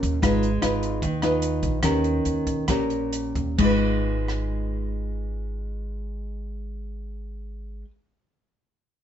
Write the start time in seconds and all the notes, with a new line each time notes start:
Already playing: A#2 C#4 G4 A#4
0.03 D#2, kick, closed hi-hat
0.22 G#1 G#3 D#4 F4 B4, kick, cross-stick, closed hi-hat
0.43 closed hi-hat
0.62 G#1 D#4 F4 B4, cross-stick, closed hi-hat
0.83 closed hi-hat
1.02 D#2 D#3, kick, closed hi-hat
1.22 D#4 F4 B4, cross-stick, closed hi-hat
1.42 closed hi-hat
1.63 A#1, kick, closed hi-hat
1.83 D#2 D#3 C#4 G4 A#4, kick, cross-stick, closed hi-hat
2.04 closed hi-hat
2.25 D#2, closed hi-hat
2.47 kick, closed hi-hat
2.68 A#1 A#2 C#4 G4 A#4, kick, cross-stick, closed hi-hat
2.90 closed hi-hat
3.13 closed hi-hat
3.35 D#2, kick, closed hi-hat
3.58 G#1 G#3 D#4, kick, crash
3.62 F4 B4
4.28 cross-stick